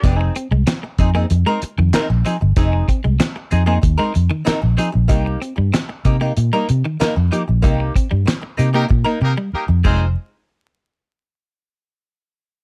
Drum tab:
CC |--------|--------|--------|-------x|
HH |xxxxxxxx|xxxxxxxx|xxxxxxxx|xxxx----|
CP |--x---x-|--x---x-|--x---x-|--x-----|
SD |--o---o-|--o---o-|--o---o-|--o-----|
BD |o--o----|oo--o---|o--o----|oo--o--o|

CC |--------|
HH |--------|
CP |--------|
SD |--------|
BD |--------|